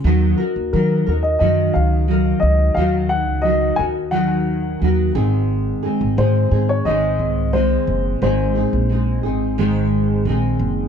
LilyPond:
<<
  \new Staff \with { instrumentName = "Upright piano" } { \time 4/4 \key aes \mixolydian \tempo 4 = 88 r4 bes'8. ees''16 ees''8 f''4 ees''8 | f''8 ges''8 ees''8 aes''8 ges''4. r8 | r4 c''8. des''16 ees''4 c''4 | c''2.~ c''8 r8 | }
  \new Staff \with { instrumentName = "Nylon-string guitar" } { \time 4/4 \key aes \mixolydian <ees ges ees' ges' bes'>8 <ees' ges' bes'>8 <ges ees' ges' bes'>8 <ees' ges' bes'>8 <ees ges ees' ges' bes'>4 <ges ees' ges' bes'>4 | <ees ges ees' ges' bes'>4 <ges ees' ges' bes'>8 <ees' ges' bes'>8 <ees ges ees' ges' bes'>4 <ges ees' ges' bes'>8 <aes, ees aes c' ees' aes'>8~ | <aes, ees aes c' ees' aes'>8 <aes c' ees' aes'>8 <aes c' ees' aes'>8 <aes c' ees' aes'>8 <aes, ees aes c' ees' aes'>4 <aes c' ees' aes'>4 | <aes, ees aes c' ees' aes'>8 <aes c' ees' aes'>8 <aes c' ees' aes'>8 <aes c' ees' aes'>8 <aes, ees aes c' ees' aes'>4 <aes c' ees' aes'>4 | }
  \new Staff \with { instrumentName = "Upright bass" } { \clef bass \time 4/4 \key aes \mixolydian ees,8 r16 ees,16 ees8 ees,8 ges,8 des,4 des,8 | ees,8. des,8. ees,4. ees,8 aes,,8~ | aes,,8 r16 aes,,16 aes,8 aes,8 aes,,8 c,4 ges,,8 | aes,,8. bes,,8. aes,,4. bes,,8 ges,,8 | }
>>